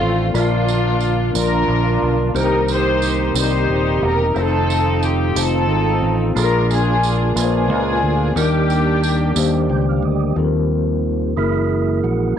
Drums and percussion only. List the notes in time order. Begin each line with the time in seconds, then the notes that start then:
0.35 tambourine
0.68 tambourine
1.01 tambourine
1.35 tambourine
2.36 tambourine
2.69 tambourine
3.02 tambourine
3.36 tambourine
4.36 tambourine
4.70 tambourine
5.03 tambourine
5.36 tambourine
6.36 tambourine
6.71 tambourine
7.03 tambourine
7.37 tambourine
8.37 tambourine
8.70 tambourine
9.04 tambourine
9.36 tambourine